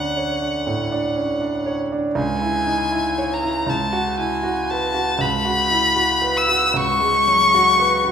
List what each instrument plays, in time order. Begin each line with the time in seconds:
Already playing: grand piano D2 C#4 D4, violin F#5
0.17 grand piano C#5
0.42 grand piano D4
0.67 grand piano A2
0.92 grand piano D4
1.16 grand piano C#4
1.41 grand piano D4
1.66 grand piano C#5
1.92 grand piano D4
2.15 grand piano C#2, violin G#5
2.42 grand piano E4
2.66 grand piano D#4
2.92 grand piano E4
3.18 grand piano C#5
3.33 violin A#5
3.43 grand piano E4
3.67 grand piano C#2, violin A5
3.93 grand piano F#4
4.18 grand piano E4, violin G#5
4.43 grand piano F#4
4.70 grand piano B4, violin A5
4.94 grand piano F#4
5.19 grand piano C#2, violin B5
5.45 grand piano F#4
5.70 grand piano E4
5.96 grand piano F#4
6.22 grand piano B4
6.37 violin E6
6.48 grand piano F#4
6.74 grand piano C#2, violin C#6
7.01 grand piano G#3
7.28 grand piano F#3
7.54 grand piano F#4
7.80 grand piano B4
8.04 grand piano F#4